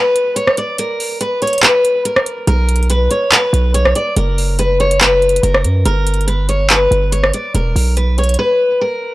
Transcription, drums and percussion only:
0.16 closed hi-hat
0.36 closed hi-hat
0.47 cross-stick
0.57 closed hi-hat
0.78 closed hi-hat
1.00 open hi-hat
1.21 closed hi-hat
1.42 closed hi-hat
1.47 closed hi-hat
1.53 closed hi-hat
1.58 closed hi-hat
1.63 clap, closed hi-hat
1.85 closed hi-hat
2.05 closed hi-hat
2.16 cross-stick
2.26 closed hi-hat
2.47 closed hi-hat
2.69 closed hi-hat
2.76 closed hi-hat
2.83 closed hi-hat
2.90 closed hi-hat
3.11 closed hi-hat
3.32 clap, closed hi-hat
3.54 closed hi-hat
3.74 closed hi-hat
3.85 cross-stick
3.95 closed hi-hat
4.16 closed hi-hat
4.38 open hi-hat
4.59 closed hi-hat
4.80 closed hi-hat
4.91 closed hi-hat
5.01 clap, closed hi-hat
5.22 closed hi-hat
5.29 closed hi-hat
5.36 closed hi-hat
5.43 closed hi-hat
5.54 cross-stick
5.64 closed hi-hat
5.85 closed hi-hat
6.07 closed hi-hat
6.14 closed hi-hat
6.21 closed hi-hat
6.28 closed hi-hat
6.49 closed hi-hat
6.70 clap, closed hi-hat
6.92 closed hi-hat
7.12 closed hi-hat
7.24 cross-stick
7.33 closed hi-hat
7.55 closed hi-hat
7.76 open hi-hat
7.97 closed hi-hat
8.18 closed hi-hat
8.24 closed hi-hat
8.29 closed hi-hat
8.34 closed hi-hat

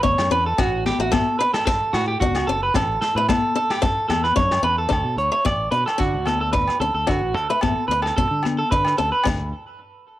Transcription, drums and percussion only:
0.04 kick, high conga
0.18 snare, low agogo
0.58 kick, snare, muted conga, low agogo
0.86 snare, muted conga, high conga
1.13 kick, snare, high conga, low agogo
1.54 snare, low agogo
1.67 kick, snare, muted conga
1.94 snare, low agogo
2.21 kick, high conga
2.35 snare, low agogo
2.48 muted conga
2.74 kick, snare, muted conga, low agogo
3.02 snare, muted conga
3.29 kick, snare, high conga, low agogo
3.70 snare, low agogo
3.82 kick, snare, muted conga, low conga
4.10 snare, high conga, low agogo
4.24 snare
4.37 kick, high conga
4.51 snare, low agogo
4.65 muted conga
4.90 kick, cross-stick, muted conga, low agogo
5.18 closed hi-hat
5.46 kick, cross-stick, muted conga, high conga, low agogo
5.73 closed hi-hat
5.88 cross-stick, low agogo
6.00 kick, muted conga
6.26 cross-stick, closed hi-hat, muted conga, high conga, low agogo
6.53 kick, high conga
6.68 cross-stick, low agogo
6.82 closed hi-hat
7.07 kick, cross-stick, muted conga, low agogo
7.37 closed hi-hat
7.61 kick, cross-stick, muted conga, high conga, low agogo
7.91 closed hi-hat
8.02 cross-stick, low agogo
8.17 kick, muted conga, low conga
8.43 cross-stick, closed hi-hat, muted conga, high conga, low agogo
8.72 kick, high conga
8.85 cross-stick, low agogo
8.99 closed hi-hat
9.24 kick, snare, crash, muted conga, low agogo

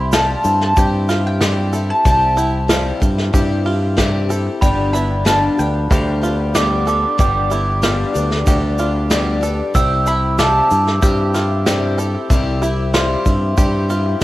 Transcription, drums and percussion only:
0.12 snare, open hi-hat, shaker
0.44 open hi-hat, shaker
0.61 snare
0.77 kick, open hi-hat, shaker
1.09 snare, open hi-hat, shaker
1.41 snare, open hi-hat, shaker
1.73 open hi-hat, shaker
2.05 kick, open hi-hat, shaker
2.37 open hi-hat, shaker
2.69 snare, open hi-hat, shaker
3.02 kick, open hi-hat, shaker
3.18 snare
3.34 kick, open hi-hat, shaker
3.66 open hi-hat
3.98 kick, snare, open hi-hat, shaker
4.30 open hi-hat, shaker
4.62 kick, open hi-hat, shaker
4.94 open hi-hat, shaker
5.26 snare, open hi-hat, shaker
5.59 open hi-hat, shaker
5.90 kick, open hi-hat, shaker
6.23 open hi-hat, shaker
6.55 snare, open hi-hat, shaker
6.87 open hi-hat, shaker
7.19 kick, open hi-hat, shaker
7.51 open hi-hat, shaker
7.83 snare, open hi-hat, shaker
8.15 open hi-hat, shaker
8.31 snare
8.47 kick, open hi-hat, shaker
8.79 open hi-hat, shaker
9.11 snare, open hi-hat, shaker
9.43 open hi-hat, shaker
9.75 kick, open hi-hat, shaker
10.07 open hi-hat, shaker
10.39 snare, open hi-hat, shaker
10.71 open hi-hat, shaker
10.87 snare
11.03 kick, open hi-hat, shaker
11.35 snare, open hi-hat, shaker
11.66 snare, open hi-hat, shaker
11.99 open hi-hat, shaker
12.30 kick, open hi-hat, shaker
12.62 open hi-hat, shaker
12.94 snare, open hi-hat, shaker
13.26 kick, open hi-hat, shaker
13.58 kick, open hi-hat, shaker
13.90 open hi-hat, shaker

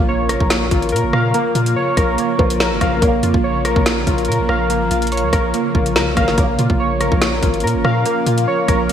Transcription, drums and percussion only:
0.29 cross-stick, closed hi-hat
0.40 kick
0.50 snare, closed hi-hat
0.71 kick, closed hi-hat
0.82 closed hi-hat
0.89 closed hi-hat
0.96 closed hi-hat
1.13 cross-stick
1.34 closed hi-hat
1.55 closed hi-hat
1.66 closed hi-hat
1.97 kick, cross-stick, closed hi-hat
2.18 closed hi-hat
2.39 kick
2.50 closed hi-hat
2.60 snare
2.81 kick, cross-stick, closed hi-hat
3.02 kick, closed hi-hat
3.23 closed hi-hat
3.34 kick
3.65 cross-stick, closed hi-hat
3.76 kick
3.86 snare, closed hi-hat
4.07 kick, closed hi-hat
4.18 closed hi-hat
4.25 closed hi-hat
4.32 closed hi-hat
4.49 cross-stick
4.70 closed hi-hat
4.91 closed hi-hat
5.02 closed hi-hat
5.07 closed hi-hat
5.12 closed hi-hat
5.17 closed hi-hat
5.33 kick, cross-stick, closed hi-hat
5.54 closed hi-hat
5.75 kick
5.86 closed hi-hat
5.96 snare
6.17 kick, cross-stick, closed hi-hat
6.28 snare
6.38 kick, closed hi-hat
6.59 closed hi-hat
6.70 kick
7.01 cross-stick, closed hi-hat
7.12 kick
7.22 snare, closed hi-hat
7.43 kick, closed hi-hat
7.54 closed hi-hat
7.60 closed hi-hat
7.67 closed hi-hat
7.85 cross-stick
8.06 closed hi-hat
8.26 closed hi-hat
8.38 closed hi-hat
8.68 kick, cross-stick, closed hi-hat
8.89 closed hi-hat

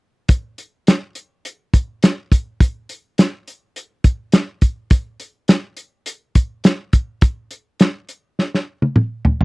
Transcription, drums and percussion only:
0.29 kick, closed hi-hat
0.58 closed hi-hat
0.87 snare, closed hi-hat
1.15 closed hi-hat
1.45 closed hi-hat
1.74 kick, closed hi-hat
2.03 snare, closed hi-hat
2.32 kick, closed hi-hat
2.60 kick, closed hi-hat
2.89 closed hi-hat
3.18 snare, closed hi-hat
3.48 closed hi-hat
3.76 closed hi-hat
4.04 kick, closed hi-hat
4.32 snare, closed hi-hat
4.61 kick, closed hi-hat
4.90 kick, closed hi-hat
5.20 closed hi-hat
5.48 snare, closed hi-hat
5.77 closed hi-hat
6.06 closed hi-hat
6.35 kick, closed hi-hat
6.64 snare, closed hi-hat
6.93 kick, closed hi-hat
7.21 kick, closed hi-hat
7.51 closed hi-hat
7.80 snare, closed hi-hat
8.09 closed hi-hat
8.39 snare
8.55 snare
8.82 high tom
8.96 mid tom
9.25 floor tom
9.41 floor tom

